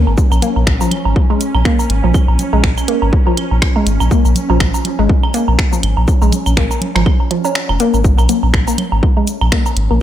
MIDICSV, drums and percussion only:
0, 0, Header, 1, 2, 480
1, 0, Start_track
1, 0, Key_signature, -5, "minor"
1, 0, Tempo, 491803
1, 173, Time_signature, 4, 2, 24, 8
1, 9781, End_track
2, 0, Start_track
2, 0, Title_t, "Drums"
2, 70, Note_on_c, 9, 77, 46
2, 167, Note_off_c, 9, 77, 0
2, 172, Note_on_c, 9, 36, 121
2, 173, Note_on_c, 9, 69, 30
2, 270, Note_off_c, 9, 36, 0
2, 271, Note_off_c, 9, 69, 0
2, 310, Note_on_c, 9, 75, 65
2, 310, Note_on_c, 9, 77, 77
2, 311, Note_on_c, 9, 69, 28
2, 407, Note_off_c, 9, 75, 0
2, 407, Note_off_c, 9, 77, 0
2, 408, Note_off_c, 9, 69, 0
2, 413, Note_on_c, 9, 64, 73
2, 414, Note_on_c, 9, 42, 89
2, 414, Note_on_c, 9, 69, 30
2, 510, Note_off_c, 9, 64, 0
2, 511, Note_off_c, 9, 42, 0
2, 511, Note_off_c, 9, 69, 0
2, 549, Note_on_c, 9, 77, 46
2, 647, Note_off_c, 9, 77, 0
2, 652, Note_on_c, 9, 36, 106
2, 653, Note_on_c, 9, 26, 89
2, 750, Note_off_c, 9, 36, 0
2, 751, Note_off_c, 9, 26, 0
2, 789, Note_on_c, 9, 77, 81
2, 790, Note_on_c, 9, 69, 46
2, 886, Note_off_c, 9, 77, 0
2, 887, Note_off_c, 9, 69, 0
2, 891, Note_on_c, 9, 64, 76
2, 891, Note_on_c, 9, 75, 67
2, 893, Note_on_c, 9, 42, 93
2, 989, Note_off_c, 9, 64, 0
2, 989, Note_off_c, 9, 75, 0
2, 991, Note_off_c, 9, 42, 0
2, 1029, Note_on_c, 9, 77, 76
2, 1126, Note_off_c, 9, 77, 0
2, 1132, Note_on_c, 9, 36, 118
2, 1230, Note_off_c, 9, 36, 0
2, 1269, Note_on_c, 9, 77, 45
2, 1367, Note_off_c, 9, 77, 0
2, 1373, Note_on_c, 9, 42, 95
2, 1373, Note_on_c, 9, 69, 31
2, 1471, Note_off_c, 9, 42, 0
2, 1471, Note_off_c, 9, 69, 0
2, 1509, Note_on_c, 9, 75, 63
2, 1509, Note_on_c, 9, 77, 77
2, 1606, Note_off_c, 9, 75, 0
2, 1606, Note_off_c, 9, 77, 0
2, 1612, Note_on_c, 9, 36, 102
2, 1613, Note_on_c, 9, 26, 87
2, 1710, Note_off_c, 9, 36, 0
2, 1711, Note_off_c, 9, 26, 0
2, 1750, Note_on_c, 9, 69, 42
2, 1750, Note_on_c, 9, 77, 77
2, 1847, Note_off_c, 9, 69, 0
2, 1847, Note_off_c, 9, 77, 0
2, 1853, Note_on_c, 9, 42, 93
2, 1951, Note_off_c, 9, 42, 0
2, 1989, Note_on_c, 9, 77, 44
2, 2086, Note_off_c, 9, 77, 0
2, 2092, Note_on_c, 9, 36, 113
2, 2092, Note_on_c, 9, 75, 67
2, 2093, Note_on_c, 9, 69, 31
2, 2190, Note_off_c, 9, 36, 0
2, 2190, Note_off_c, 9, 75, 0
2, 2191, Note_off_c, 9, 69, 0
2, 2229, Note_on_c, 9, 77, 72
2, 2326, Note_off_c, 9, 77, 0
2, 2332, Note_on_c, 9, 64, 75
2, 2333, Note_on_c, 9, 42, 87
2, 2333, Note_on_c, 9, 69, 30
2, 2429, Note_off_c, 9, 64, 0
2, 2431, Note_off_c, 9, 42, 0
2, 2431, Note_off_c, 9, 69, 0
2, 2469, Note_on_c, 9, 77, 76
2, 2567, Note_off_c, 9, 77, 0
2, 2572, Note_on_c, 9, 36, 98
2, 2573, Note_on_c, 9, 26, 88
2, 2670, Note_off_c, 9, 36, 0
2, 2671, Note_off_c, 9, 26, 0
2, 2710, Note_on_c, 9, 69, 47
2, 2710, Note_on_c, 9, 75, 70
2, 2710, Note_on_c, 9, 77, 45
2, 2807, Note_off_c, 9, 69, 0
2, 2807, Note_off_c, 9, 75, 0
2, 2807, Note_off_c, 9, 77, 0
2, 2813, Note_on_c, 9, 42, 90
2, 2910, Note_off_c, 9, 42, 0
2, 2948, Note_on_c, 9, 77, 75
2, 3046, Note_off_c, 9, 77, 0
2, 3052, Note_on_c, 9, 36, 121
2, 3150, Note_off_c, 9, 36, 0
2, 3189, Note_on_c, 9, 77, 74
2, 3286, Note_off_c, 9, 77, 0
2, 3293, Note_on_c, 9, 42, 91
2, 3293, Note_on_c, 9, 75, 69
2, 3390, Note_off_c, 9, 75, 0
2, 3391, Note_off_c, 9, 42, 0
2, 3429, Note_on_c, 9, 77, 42
2, 3527, Note_off_c, 9, 77, 0
2, 3533, Note_on_c, 9, 26, 81
2, 3533, Note_on_c, 9, 36, 98
2, 3630, Note_off_c, 9, 36, 0
2, 3631, Note_off_c, 9, 26, 0
2, 3668, Note_on_c, 9, 77, 75
2, 3765, Note_off_c, 9, 77, 0
2, 3773, Note_on_c, 9, 42, 92
2, 3773, Note_on_c, 9, 69, 29
2, 3871, Note_off_c, 9, 42, 0
2, 3871, Note_off_c, 9, 69, 0
2, 3908, Note_on_c, 9, 75, 69
2, 3908, Note_on_c, 9, 77, 75
2, 3910, Note_on_c, 9, 69, 29
2, 4006, Note_off_c, 9, 75, 0
2, 4006, Note_off_c, 9, 77, 0
2, 4008, Note_off_c, 9, 69, 0
2, 4013, Note_on_c, 9, 36, 108
2, 4014, Note_on_c, 9, 69, 33
2, 4110, Note_off_c, 9, 36, 0
2, 4111, Note_off_c, 9, 69, 0
2, 4149, Note_on_c, 9, 77, 42
2, 4150, Note_on_c, 9, 69, 29
2, 4246, Note_off_c, 9, 77, 0
2, 4248, Note_off_c, 9, 69, 0
2, 4251, Note_on_c, 9, 64, 75
2, 4253, Note_on_c, 9, 42, 83
2, 4253, Note_on_c, 9, 69, 33
2, 4349, Note_off_c, 9, 64, 0
2, 4351, Note_off_c, 9, 42, 0
2, 4351, Note_off_c, 9, 69, 0
2, 4389, Note_on_c, 9, 77, 77
2, 4487, Note_off_c, 9, 77, 0
2, 4492, Note_on_c, 9, 75, 70
2, 4493, Note_on_c, 9, 26, 90
2, 4493, Note_on_c, 9, 36, 96
2, 4590, Note_off_c, 9, 36, 0
2, 4590, Note_off_c, 9, 75, 0
2, 4591, Note_off_c, 9, 26, 0
2, 4629, Note_on_c, 9, 69, 49
2, 4629, Note_on_c, 9, 77, 77
2, 4726, Note_off_c, 9, 77, 0
2, 4727, Note_off_c, 9, 69, 0
2, 4732, Note_on_c, 9, 64, 76
2, 4733, Note_on_c, 9, 42, 87
2, 4830, Note_off_c, 9, 42, 0
2, 4830, Note_off_c, 9, 64, 0
2, 4869, Note_on_c, 9, 77, 42
2, 4966, Note_off_c, 9, 77, 0
2, 4973, Note_on_c, 9, 36, 115
2, 5070, Note_off_c, 9, 36, 0
2, 5109, Note_on_c, 9, 75, 69
2, 5109, Note_on_c, 9, 77, 74
2, 5207, Note_off_c, 9, 75, 0
2, 5207, Note_off_c, 9, 77, 0
2, 5213, Note_on_c, 9, 42, 89
2, 5213, Note_on_c, 9, 69, 34
2, 5310, Note_off_c, 9, 42, 0
2, 5310, Note_off_c, 9, 69, 0
2, 5349, Note_on_c, 9, 77, 72
2, 5447, Note_off_c, 9, 77, 0
2, 5452, Note_on_c, 9, 36, 100
2, 5453, Note_on_c, 9, 26, 86
2, 5550, Note_off_c, 9, 26, 0
2, 5550, Note_off_c, 9, 36, 0
2, 5589, Note_on_c, 9, 77, 43
2, 5590, Note_on_c, 9, 69, 42
2, 5686, Note_off_c, 9, 77, 0
2, 5688, Note_off_c, 9, 69, 0
2, 5692, Note_on_c, 9, 75, 70
2, 5693, Note_on_c, 9, 42, 86
2, 5789, Note_off_c, 9, 75, 0
2, 5791, Note_off_c, 9, 42, 0
2, 5828, Note_on_c, 9, 77, 72
2, 5925, Note_off_c, 9, 77, 0
2, 5932, Note_on_c, 9, 36, 112
2, 5933, Note_on_c, 9, 69, 34
2, 6030, Note_off_c, 9, 36, 0
2, 6030, Note_off_c, 9, 69, 0
2, 6068, Note_on_c, 9, 77, 73
2, 6070, Note_on_c, 9, 69, 29
2, 6165, Note_off_c, 9, 77, 0
2, 6168, Note_off_c, 9, 69, 0
2, 6171, Note_on_c, 9, 64, 81
2, 6173, Note_on_c, 9, 42, 83
2, 6173, Note_on_c, 9, 69, 32
2, 6269, Note_off_c, 9, 64, 0
2, 6271, Note_off_c, 9, 42, 0
2, 6271, Note_off_c, 9, 69, 0
2, 6308, Note_on_c, 9, 75, 66
2, 6308, Note_on_c, 9, 77, 43
2, 6310, Note_on_c, 9, 69, 31
2, 6405, Note_off_c, 9, 75, 0
2, 6405, Note_off_c, 9, 77, 0
2, 6407, Note_off_c, 9, 69, 0
2, 6412, Note_on_c, 9, 36, 102
2, 6413, Note_on_c, 9, 26, 95
2, 6510, Note_off_c, 9, 36, 0
2, 6511, Note_off_c, 9, 26, 0
2, 6548, Note_on_c, 9, 77, 78
2, 6550, Note_on_c, 9, 69, 51
2, 6645, Note_off_c, 9, 77, 0
2, 6647, Note_off_c, 9, 69, 0
2, 6651, Note_on_c, 9, 64, 81
2, 6653, Note_on_c, 9, 42, 91
2, 6749, Note_off_c, 9, 64, 0
2, 6751, Note_off_c, 9, 42, 0
2, 6787, Note_on_c, 9, 77, 73
2, 6790, Note_on_c, 9, 26, 64
2, 6885, Note_off_c, 9, 77, 0
2, 6887, Note_off_c, 9, 26, 0
2, 6891, Note_on_c, 9, 75, 68
2, 6892, Note_on_c, 9, 36, 114
2, 6989, Note_off_c, 9, 75, 0
2, 6990, Note_off_c, 9, 36, 0
2, 7028, Note_on_c, 9, 77, 45
2, 7126, Note_off_c, 9, 77, 0
2, 7133, Note_on_c, 9, 42, 91
2, 7230, Note_off_c, 9, 42, 0
2, 7267, Note_on_c, 9, 77, 73
2, 7269, Note_on_c, 9, 69, 52
2, 7365, Note_off_c, 9, 77, 0
2, 7367, Note_off_c, 9, 69, 0
2, 7372, Note_on_c, 9, 26, 92
2, 7469, Note_off_c, 9, 26, 0
2, 7509, Note_on_c, 9, 75, 65
2, 7509, Note_on_c, 9, 77, 75
2, 7606, Note_off_c, 9, 75, 0
2, 7606, Note_off_c, 9, 77, 0
2, 7612, Note_on_c, 9, 42, 90
2, 7612, Note_on_c, 9, 69, 31
2, 7710, Note_off_c, 9, 42, 0
2, 7710, Note_off_c, 9, 69, 0
2, 7748, Note_on_c, 9, 77, 42
2, 7749, Note_on_c, 9, 69, 30
2, 7845, Note_off_c, 9, 77, 0
2, 7846, Note_off_c, 9, 69, 0
2, 7852, Note_on_c, 9, 36, 119
2, 7852, Note_on_c, 9, 69, 32
2, 7949, Note_off_c, 9, 36, 0
2, 7949, Note_off_c, 9, 69, 0
2, 7988, Note_on_c, 9, 75, 64
2, 7988, Note_on_c, 9, 77, 74
2, 7989, Note_on_c, 9, 69, 31
2, 8086, Note_off_c, 9, 69, 0
2, 8086, Note_off_c, 9, 75, 0
2, 8086, Note_off_c, 9, 77, 0
2, 8091, Note_on_c, 9, 64, 82
2, 8092, Note_on_c, 9, 42, 89
2, 8092, Note_on_c, 9, 69, 33
2, 8189, Note_off_c, 9, 64, 0
2, 8190, Note_off_c, 9, 42, 0
2, 8190, Note_off_c, 9, 69, 0
2, 8229, Note_on_c, 9, 77, 47
2, 8326, Note_off_c, 9, 77, 0
2, 8332, Note_on_c, 9, 26, 94
2, 8332, Note_on_c, 9, 36, 98
2, 8429, Note_off_c, 9, 26, 0
2, 8429, Note_off_c, 9, 36, 0
2, 8467, Note_on_c, 9, 77, 81
2, 8469, Note_on_c, 9, 69, 51
2, 8565, Note_off_c, 9, 77, 0
2, 8567, Note_off_c, 9, 69, 0
2, 8571, Note_on_c, 9, 42, 92
2, 8571, Note_on_c, 9, 64, 85
2, 8571, Note_on_c, 9, 75, 64
2, 8669, Note_off_c, 9, 42, 0
2, 8669, Note_off_c, 9, 64, 0
2, 8669, Note_off_c, 9, 75, 0
2, 8707, Note_on_c, 9, 77, 78
2, 8805, Note_off_c, 9, 77, 0
2, 8812, Note_on_c, 9, 36, 116
2, 8909, Note_off_c, 9, 36, 0
2, 8948, Note_on_c, 9, 77, 44
2, 9046, Note_off_c, 9, 77, 0
2, 9052, Note_on_c, 9, 42, 94
2, 9052, Note_on_c, 9, 69, 34
2, 9149, Note_off_c, 9, 42, 0
2, 9149, Note_off_c, 9, 69, 0
2, 9188, Note_on_c, 9, 75, 66
2, 9188, Note_on_c, 9, 77, 77
2, 9286, Note_off_c, 9, 75, 0
2, 9286, Note_off_c, 9, 77, 0
2, 9292, Note_on_c, 9, 26, 95
2, 9292, Note_on_c, 9, 36, 102
2, 9389, Note_off_c, 9, 26, 0
2, 9389, Note_off_c, 9, 36, 0
2, 9428, Note_on_c, 9, 77, 81
2, 9429, Note_on_c, 9, 69, 45
2, 9526, Note_off_c, 9, 69, 0
2, 9526, Note_off_c, 9, 77, 0
2, 9532, Note_on_c, 9, 42, 93
2, 9629, Note_off_c, 9, 42, 0
2, 9669, Note_on_c, 9, 77, 43
2, 9767, Note_off_c, 9, 77, 0
2, 9781, End_track
0, 0, End_of_file